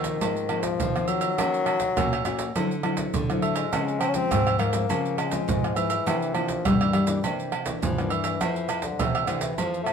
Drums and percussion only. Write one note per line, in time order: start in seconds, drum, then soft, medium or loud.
0.04 pandeiro medium
0.04 maracas medium
0.04 surdo soft
0.21 pandeiro medium
0.21 low agogo medium
0.21 maracas medium
0.21 surdo medium
0.36 pandeiro soft
0.36 maracas soft
0.49 pandeiro medium
0.49 tamborim medium
0.49 low agogo medium
0.63 pandeiro medium
0.63 maracas loud
0.63 surdo soft
0.80 pandeiro medium
0.80 maracas medium
0.80 surdo loud
0.96 pandeiro soft
0.96 tamborim medium
0.96 maracas soft
0.96 surdo soft
1.08 pandeiro medium
1.08 high agogo medium
1.08 maracas medium
1.21 pandeiro medium
1.21 high agogo medium
1.21 maracas medium
1.38 pandeiro medium
1.38 tamborim medium
1.38 low agogo medium
1.38 maracas medium
1.38 surdo medium
1.54 pandeiro soft
1.54 maracas soft
1.66 pandeiro medium
1.66 tamborim medium
1.66 low agogo medium
1.80 pandeiro medium
1.80 maracas medium
1.80 surdo soft
1.97 pandeiro medium
1.97 tamborim loud
1.97 high agogo medium
1.97 maracas medium
1.97 surdo loud
2.13 pandeiro soft
2.13 tamborim medium
2.13 high agogo medium
2.13 maracas soft
2.25 pandeiro medium
2.25 tamborim medium
2.25 high agogo medium
2.25 maracas medium
2.39 pandeiro medium
2.39 maracas medium
2.39 surdo soft
2.56 pandeiro medium
2.56 low agogo medium
2.56 maracas medium
2.56 surdo medium
2.71 pandeiro soft
2.71 maracas soft
2.83 pandeiro medium
2.83 tamborim medium
2.83 low agogo medium
2.97 pandeiro medium
2.97 maracas medium
2.97 surdo soft
3.14 pandeiro medium
3.14 maracas medium
3.14 surdo loud
3.30 pandeiro soft
3.30 tamborim medium
3.30 maracas soft
3.30 surdo soft
3.42 pandeiro medium
3.42 high agogo medium
3.56 pandeiro medium
3.56 high agogo medium
3.56 maracas medium
3.73 pandeiro medium
3.73 tamborim medium
3.73 low agogo medium
3.73 maracas medium
3.73 surdo medium
3.88 pandeiro soft
3.88 maracas soft
4.01 pandeiro medium
4.01 tamborim medium
4.01 low agogo medium
4.01 maracas medium
4.14 pandeiro medium
4.14 maracas medium
4.14 surdo soft
4.31 pandeiro medium
4.31 tamborim medium
4.31 high agogo medium
4.31 maracas loud
4.31 surdo loud
4.47 pandeiro soft
4.47 tamborim medium
4.47 high agogo medium
4.47 maracas soft
4.59 pandeiro medium
4.59 tamborim medium
4.59 high agogo medium
4.59 surdo soft
4.73 pandeiro medium
4.73 maracas medium
4.73 surdo soft
4.90 pandeiro medium
4.90 low agogo medium
4.90 maracas medium
4.90 surdo medium
5.06 pandeiro soft
5.06 maracas soft
5.18 pandeiro medium
5.18 tamborim medium
5.18 low agogo medium
5.18 maracas medium
5.32 pandeiro medium
5.32 maracas medium
5.32 surdo soft
5.49 pandeiro medium
5.49 maracas medium
5.49 surdo loud
5.64 pandeiro soft
5.64 tamborim medium
5.64 maracas soft
5.64 surdo soft
5.76 pandeiro medium
5.76 high agogo medium
5.76 maracas medium
5.90 pandeiro medium
5.90 high agogo medium
5.90 maracas medium
6.07 pandeiro medium
6.07 tamborim medium
6.07 low agogo medium
6.07 maracas medium
6.07 surdo medium
6.22 pandeiro soft
6.22 maracas soft
6.35 pandeiro medium
6.35 tamborim medium
6.35 low agogo medium
6.48 pandeiro medium
6.48 maracas medium
6.48 surdo soft
6.65 pandeiro medium
6.65 tamborim medium
6.65 high agogo loud
6.65 maracas loud
6.65 surdo loud
6.81 pandeiro soft
6.81 tamborim medium
6.81 high agogo medium
6.81 maracas soft
6.93 pandeiro medium
6.93 tamborim medium
6.93 high agogo medium
7.07 pandeiro medium
7.07 maracas medium
7.07 surdo soft
7.24 pandeiro medium
7.24 low agogo medium
7.24 maracas medium
7.24 surdo medium
7.40 pandeiro soft
7.40 maracas soft
7.52 pandeiro medium
7.52 tamborim medium
7.52 low agogo medium
7.66 pandeiro medium
7.66 maracas medium
7.66 surdo soft
7.83 pandeiro medium
7.83 maracas medium
7.83 surdo loud
7.98 pandeiro soft
7.98 tamborim medium
7.98 maracas soft
7.98 surdo soft
8.10 pandeiro medium
8.10 high agogo medium
8.24 pandeiro medium
8.24 high agogo medium
8.24 maracas medium
8.41 pandeiro medium
8.41 tamborim medium
8.41 low agogo medium
8.41 maracas medium
8.41 surdo medium
8.56 pandeiro soft
8.56 maracas soft
8.69 pandeiro medium
8.69 tamborim medium
8.69 low agogo medium
8.69 maracas medium
8.82 pandeiro medium
8.82 maracas medium
8.82 surdo soft
8.99 pandeiro medium
8.99 tamborim medium
8.99 high agogo medium
8.99 maracas loud
8.99 surdo loud
9.15 pandeiro soft
9.15 tamborim medium
9.15 high agogo medium
9.15 maracas soft
9.27 pandeiro medium
9.27 tamborim medium
9.27 high agogo medium
9.27 maracas medium
9.41 pandeiro medium
9.41 maracas medium
9.41 surdo soft
9.58 pandeiro medium
9.58 low agogo medium
9.58 maracas medium
9.58 surdo medium
9.74 pandeiro soft
9.74 maracas soft
9.86 pandeiro medium
9.86 tamborim medium
9.86 low agogo medium
9.86 maracas medium